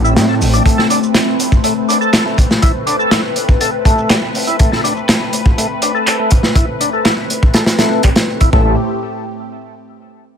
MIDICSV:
0, 0, Header, 1, 5, 480
1, 0, Start_track
1, 0, Key_signature, 0, "minor"
1, 0, Tempo, 491803
1, 645, Time_signature, 4, 2, 24, 8
1, 10127, End_track
2, 0, Start_track
2, 0, Title_t, "Tonewheel organ"
2, 0, Program_c, 0, 16
2, 44, Note_on_c, 0, 64, 72
2, 134, Note_off_c, 0, 64, 0
2, 160, Note_on_c, 0, 55, 80
2, 254, Note_off_c, 0, 55, 0
2, 284, Note_on_c, 0, 69, 80
2, 339, Note_off_c, 0, 69, 0
2, 523, Note_on_c, 0, 62, 76
2, 614, Note_off_c, 0, 62, 0
2, 640, Note_on_c, 0, 57, 85
2, 759, Note_off_c, 0, 57, 0
2, 763, Note_on_c, 0, 69, 77
2, 854, Note_off_c, 0, 69, 0
2, 882, Note_on_c, 0, 62, 77
2, 975, Note_off_c, 0, 62, 0
2, 1602, Note_on_c, 0, 57, 84
2, 1695, Note_off_c, 0, 57, 0
2, 1841, Note_on_c, 0, 62, 75
2, 1935, Note_off_c, 0, 62, 0
2, 1962, Note_on_c, 0, 69, 71
2, 2192, Note_off_c, 0, 69, 0
2, 2202, Note_on_c, 0, 57, 82
2, 2317, Note_off_c, 0, 57, 0
2, 2561, Note_on_c, 0, 64, 82
2, 2655, Note_off_c, 0, 64, 0
2, 2798, Note_on_c, 0, 62, 77
2, 2893, Note_off_c, 0, 62, 0
2, 2922, Note_on_c, 0, 69, 76
2, 3031, Note_off_c, 0, 69, 0
2, 3041, Note_on_c, 0, 64, 82
2, 3135, Note_off_c, 0, 64, 0
2, 3523, Note_on_c, 0, 69, 81
2, 3616, Note_off_c, 0, 69, 0
2, 3764, Note_on_c, 0, 57, 101
2, 3993, Note_off_c, 0, 57, 0
2, 4001, Note_on_c, 0, 55, 80
2, 4058, Note_off_c, 0, 55, 0
2, 4365, Note_on_c, 0, 64, 77
2, 4455, Note_off_c, 0, 64, 0
2, 4482, Note_on_c, 0, 57, 79
2, 4600, Note_off_c, 0, 57, 0
2, 4607, Note_on_c, 0, 69, 78
2, 4696, Note_off_c, 0, 69, 0
2, 4724, Note_on_c, 0, 62, 77
2, 4816, Note_off_c, 0, 62, 0
2, 5443, Note_on_c, 0, 57, 83
2, 5536, Note_off_c, 0, 57, 0
2, 5687, Note_on_c, 0, 62, 78
2, 5778, Note_off_c, 0, 62, 0
2, 5804, Note_on_c, 0, 69, 71
2, 6034, Note_off_c, 0, 69, 0
2, 6044, Note_on_c, 0, 57, 77
2, 6158, Note_off_c, 0, 57, 0
2, 6402, Note_on_c, 0, 64, 85
2, 6495, Note_off_c, 0, 64, 0
2, 6642, Note_on_c, 0, 62, 78
2, 6735, Note_off_c, 0, 62, 0
2, 6765, Note_on_c, 0, 69, 72
2, 6873, Note_off_c, 0, 69, 0
2, 6883, Note_on_c, 0, 64, 80
2, 6976, Note_off_c, 0, 64, 0
2, 7365, Note_on_c, 0, 69, 83
2, 7457, Note_off_c, 0, 69, 0
2, 7603, Note_on_c, 0, 57, 95
2, 7833, Note_off_c, 0, 57, 0
2, 7845, Note_on_c, 0, 55, 80
2, 7900, Note_off_c, 0, 55, 0
2, 8207, Note_on_c, 0, 64, 77
2, 8295, Note_off_c, 0, 64, 0
2, 8324, Note_on_c, 0, 57, 94
2, 8548, Note_off_c, 0, 57, 0
2, 10127, End_track
3, 0, Start_track
3, 0, Title_t, "Analog synth pad"
3, 0, Program_c, 1, 89
3, 0, Note_on_c, 1, 57, 84
3, 0, Note_on_c, 1, 60, 77
3, 0, Note_on_c, 1, 67, 90
3, 635, Note_off_c, 1, 67, 0
3, 645, Note_on_c, 1, 71, 93
3, 8289, Note_off_c, 1, 60, 0
3, 8290, Note_off_c, 1, 57, 0
3, 8311, Note_off_c, 1, 71, 0
3, 8328, Note_on_c, 1, 57, 68
3, 8329, Note_on_c, 1, 60, 63
3, 8329, Note_on_c, 1, 67, 82
3, 8330, Note_on_c, 1, 45, 71
3, 8550, Note_off_c, 1, 57, 0
3, 8550, Note_off_c, 1, 60, 0
3, 8551, Note_off_c, 1, 45, 0
3, 8551, Note_off_c, 1, 67, 0
3, 10127, End_track
4, 0, Start_track
4, 0, Title_t, "Detuned saw bass"
4, 0, Program_c, 2, 39
4, 0, Note_on_c, 2, 33, 101
4, 162, Note_on_c, 2, 45, 92
4, 177, Note_off_c, 2, 33, 0
4, 402, Note_on_c, 2, 33, 89
4, 416, Note_off_c, 2, 45, 0
4, 591, Note_off_c, 2, 33, 0
4, 8325, Note_on_c, 2, 33, 96
4, 8548, Note_off_c, 2, 33, 0
4, 10127, End_track
5, 0, Start_track
5, 0, Title_t, "Drums"
5, 48, Note_on_c, 9, 82, 41
5, 146, Note_off_c, 9, 82, 0
5, 161, Note_on_c, 9, 38, 122
5, 162, Note_on_c, 9, 42, 78
5, 166, Note_on_c, 9, 82, 33
5, 259, Note_off_c, 9, 38, 0
5, 260, Note_off_c, 9, 42, 0
5, 264, Note_off_c, 9, 82, 0
5, 405, Note_on_c, 9, 82, 72
5, 406, Note_on_c, 9, 46, 83
5, 503, Note_off_c, 9, 46, 0
5, 503, Note_off_c, 9, 82, 0
5, 523, Note_on_c, 9, 42, 40
5, 529, Note_on_c, 9, 82, 42
5, 620, Note_off_c, 9, 42, 0
5, 626, Note_off_c, 9, 82, 0
5, 640, Note_on_c, 9, 36, 106
5, 645, Note_on_c, 9, 82, 30
5, 647, Note_on_c, 9, 42, 92
5, 738, Note_off_c, 9, 36, 0
5, 743, Note_off_c, 9, 82, 0
5, 745, Note_off_c, 9, 42, 0
5, 769, Note_on_c, 9, 38, 45
5, 867, Note_off_c, 9, 38, 0
5, 880, Note_on_c, 9, 42, 72
5, 885, Note_on_c, 9, 82, 71
5, 978, Note_off_c, 9, 42, 0
5, 983, Note_off_c, 9, 82, 0
5, 1008, Note_on_c, 9, 82, 39
5, 1105, Note_off_c, 9, 82, 0
5, 1117, Note_on_c, 9, 38, 123
5, 1118, Note_on_c, 9, 42, 90
5, 1126, Note_on_c, 9, 39, 104
5, 1126, Note_on_c, 9, 82, 31
5, 1215, Note_off_c, 9, 38, 0
5, 1216, Note_off_c, 9, 42, 0
5, 1224, Note_off_c, 9, 39, 0
5, 1224, Note_off_c, 9, 82, 0
5, 1363, Note_on_c, 9, 42, 69
5, 1365, Note_on_c, 9, 82, 75
5, 1461, Note_off_c, 9, 42, 0
5, 1463, Note_off_c, 9, 82, 0
5, 1484, Note_on_c, 9, 36, 92
5, 1487, Note_on_c, 9, 82, 42
5, 1582, Note_off_c, 9, 36, 0
5, 1585, Note_off_c, 9, 82, 0
5, 1599, Note_on_c, 9, 42, 90
5, 1605, Note_on_c, 9, 82, 30
5, 1696, Note_off_c, 9, 42, 0
5, 1702, Note_off_c, 9, 82, 0
5, 1844, Note_on_c, 9, 82, 69
5, 1856, Note_on_c, 9, 42, 75
5, 1942, Note_off_c, 9, 82, 0
5, 1953, Note_off_c, 9, 42, 0
5, 1966, Note_on_c, 9, 82, 42
5, 2064, Note_off_c, 9, 82, 0
5, 2082, Note_on_c, 9, 38, 123
5, 2084, Note_on_c, 9, 42, 99
5, 2085, Note_on_c, 9, 39, 106
5, 2085, Note_on_c, 9, 82, 30
5, 2180, Note_off_c, 9, 38, 0
5, 2182, Note_off_c, 9, 42, 0
5, 2183, Note_off_c, 9, 39, 0
5, 2183, Note_off_c, 9, 82, 0
5, 2323, Note_on_c, 9, 82, 72
5, 2324, Note_on_c, 9, 36, 88
5, 2328, Note_on_c, 9, 42, 73
5, 2421, Note_off_c, 9, 36, 0
5, 2421, Note_off_c, 9, 82, 0
5, 2425, Note_off_c, 9, 42, 0
5, 2446, Note_on_c, 9, 82, 41
5, 2448, Note_on_c, 9, 38, 58
5, 2544, Note_off_c, 9, 82, 0
5, 2545, Note_off_c, 9, 38, 0
5, 2560, Note_on_c, 9, 42, 85
5, 2563, Note_on_c, 9, 82, 28
5, 2566, Note_on_c, 9, 36, 119
5, 2658, Note_off_c, 9, 42, 0
5, 2661, Note_off_c, 9, 82, 0
5, 2664, Note_off_c, 9, 36, 0
5, 2800, Note_on_c, 9, 42, 70
5, 2805, Note_on_c, 9, 82, 72
5, 2897, Note_off_c, 9, 42, 0
5, 2903, Note_off_c, 9, 82, 0
5, 2927, Note_on_c, 9, 82, 39
5, 3024, Note_off_c, 9, 82, 0
5, 3039, Note_on_c, 9, 38, 111
5, 3040, Note_on_c, 9, 42, 81
5, 3045, Note_on_c, 9, 39, 104
5, 3045, Note_on_c, 9, 82, 30
5, 3137, Note_off_c, 9, 38, 0
5, 3138, Note_off_c, 9, 42, 0
5, 3143, Note_off_c, 9, 39, 0
5, 3143, Note_off_c, 9, 82, 0
5, 3278, Note_on_c, 9, 42, 66
5, 3284, Note_on_c, 9, 82, 74
5, 3376, Note_off_c, 9, 42, 0
5, 3382, Note_off_c, 9, 82, 0
5, 3403, Note_on_c, 9, 36, 97
5, 3405, Note_on_c, 9, 82, 40
5, 3501, Note_off_c, 9, 36, 0
5, 3503, Note_off_c, 9, 82, 0
5, 3520, Note_on_c, 9, 42, 86
5, 3523, Note_on_c, 9, 82, 29
5, 3617, Note_off_c, 9, 42, 0
5, 3620, Note_off_c, 9, 82, 0
5, 3761, Note_on_c, 9, 36, 96
5, 3763, Note_on_c, 9, 82, 70
5, 3766, Note_on_c, 9, 42, 74
5, 3858, Note_off_c, 9, 36, 0
5, 3861, Note_off_c, 9, 82, 0
5, 3863, Note_off_c, 9, 42, 0
5, 3885, Note_on_c, 9, 82, 40
5, 3983, Note_off_c, 9, 82, 0
5, 3996, Note_on_c, 9, 42, 87
5, 4002, Note_on_c, 9, 38, 126
5, 4003, Note_on_c, 9, 39, 101
5, 4093, Note_off_c, 9, 42, 0
5, 4099, Note_off_c, 9, 38, 0
5, 4101, Note_off_c, 9, 39, 0
5, 4243, Note_on_c, 9, 82, 74
5, 4245, Note_on_c, 9, 46, 74
5, 4340, Note_off_c, 9, 82, 0
5, 4342, Note_off_c, 9, 46, 0
5, 4365, Note_on_c, 9, 82, 42
5, 4367, Note_on_c, 9, 42, 42
5, 4462, Note_off_c, 9, 82, 0
5, 4464, Note_off_c, 9, 42, 0
5, 4482, Note_on_c, 9, 42, 86
5, 4483, Note_on_c, 9, 82, 31
5, 4488, Note_on_c, 9, 36, 115
5, 4580, Note_off_c, 9, 42, 0
5, 4580, Note_off_c, 9, 82, 0
5, 4586, Note_off_c, 9, 36, 0
5, 4612, Note_on_c, 9, 38, 40
5, 4709, Note_off_c, 9, 38, 0
5, 4724, Note_on_c, 9, 82, 72
5, 4730, Note_on_c, 9, 42, 72
5, 4822, Note_off_c, 9, 82, 0
5, 4828, Note_off_c, 9, 42, 0
5, 4847, Note_on_c, 9, 82, 41
5, 4944, Note_off_c, 9, 82, 0
5, 4965, Note_on_c, 9, 39, 99
5, 4965, Note_on_c, 9, 42, 91
5, 4966, Note_on_c, 9, 38, 127
5, 5062, Note_off_c, 9, 39, 0
5, 5063, Note_off_c, 9, 42, 0
5, 5064, Note_off_c, 9, 38, 0
5, 5200, Note_on_c, 9, 42, 68
5, 5205, Note_on_c, 9, 82, 77
5, 5298, Note_off_c, 9, 42, 0
5, 5303, Note_off_c, 9, 82, 0
5, 5325, Note_on_c, 9, 36, 101
5, 5328, Note_on_c, 9, 82, 42
5, 5423, Note_off_c, 9, 36, 0
5, 5425, Note_off_c, 9, 82, 0
5, 5448, Note_on_c, 9, 42, 85
5, 5545, Note_off_c, 9, 42, 0
5, 5679, Note_on_c, 9, 42, 75
5, 5686, Note_on_c, 9, 82, 70
5, 5777, Note_off_c, 9, 42, 0
5, 5783, Note_off_c, 9, 82, 0
5, 5809, Note_on_c, 9, 82, 42
5, 5906, Note_off_c, 9, 82, 0
5, 5921, Note_on_c, 9, 42, 63
5, 5925, Note_on_c, 9, 39, 102
5, 6019, Note_off_c, 9, 42, 0
5, 6023, Note_off_c, 9, 39, 0
5, 6153, Note_on_c, 9, 42, 65
5, 6165, Note_on_c, 9, 36, 90
5, 6166, Note_on_c, 9, 82, 73
5, 6251, Note_off_c, 9, 42, 0
5, 6263, Note_off_c, 9, 36, 0
5, 6264, Note_off_c, 9, 82, 0
5, 6277, Note_on_c, 9, 38, 49
5, 6375, Note_off_c, 9, 38, 0
5, 6397, Note_on_c, 9, 36, 114
5, 6399, Note_on_c, 9, 42, 94
5, 6495, Note_off_c, 9, 36, 0
5, 6497, Note_off_c, 9, 42, 0
5, 6643, Note_on_c, 9, 42, 62
5, 6644, Note_on_c, 9, 82, 74
5, 6741, Note_off_c, 9, 42, 0
5, 6742, Note_off_c, 9, 82, 0
5, 6768, Note_on_c, 9, 82, 43
5, 6866, Note_off_c, 9, 82, 0
5, 6880, Note_on_c, 9, 42, 84
5, 6884, Note_on_c, 9, 38, 111
5, 6886, Note_on_c, 9, 39, 102
5, 6977, Note_off_c, 9, 42, 0
5, 6982, Note_off_c, 9, 38, 0
5, 6984, Note_off_c, 9, 39, 0
5, 7125, Note_on_c, 9, 42, 66
5, 7126, Note_on_c, 9, 82, 77
5, 7223, Note_off_c, 9, 42, 0
5, 7224, Note_off_c, 9, 82, 0
5, 7249, Note_on_c, 9, 36, 104
5, 7249, Note_on_c, 9, 82, 43
5, 7346, Note_off_c, 9, 82, 0
5, 7347, Note_off_c, 9, 36, 0
5, 7355, Note_on_c, 9, 42, 86
5, 7363, Note_on_c, 9, 38, 103
5, 7452, Note_off_c, 9, 42, 0
5, 7460, Note_off_c, 9, 38, 0
5, 7480, Note_on_c, 9, 38, 95
5, 7488, Note_on_c, 9, 42, 81
5, 7578, Note_off_c, 9, 38, 0
5, 7586, Note_off_c, 9, 42, 0
5, 7598, Note_on_c, 9, 42, 80
5, 7599, Note_on_c, 9, 38, 102
5, 7696, Note_off_c, 9, 42, 0
5, 7697, Note_off_c, 9, 38, 0
5, 7728, Note_on_c, 9, 82, 44
5, 7825, Note_off_c, 9, 82, 0
5, 7836, Note_on_c, 9, 42, 67
5, 7847, Note_on_c, 9, 39, 105
5, 7848, Note_on_c, 9, 36, 85
5, 7934, Note_off_c, 9, 42, 0
5, 7944, Note_off_c, 9, 39, 0
5, 7946, Note_off_c, 9, 36, 0
5, 7960, Note_on_c, 9, 42, 76
5, 7965, Note_on_c, 9, 38, 111
5, 8058, Note_off_c, 9, 42, 0
5, 8062, Note_off_c, 9, 38, 0
5, 8086, Note_on_c, 9, 82, 79
5, 8183, Note_off_c, 9, 82, 0
5, 8203, Note_on_c, 9, 42, 57
5, 8207, Note_on_c, 9, 36, 80
5, 8301, Note_off_c, 9, 42, 0
5, 8305, Note_off_c, 9, 36, 0
5, 8325, Note_on_c, 9, 36, 120
5, 8423, Note_off_c, 9, 36, 0
5, 10127, End_track
0, 0, End_of_file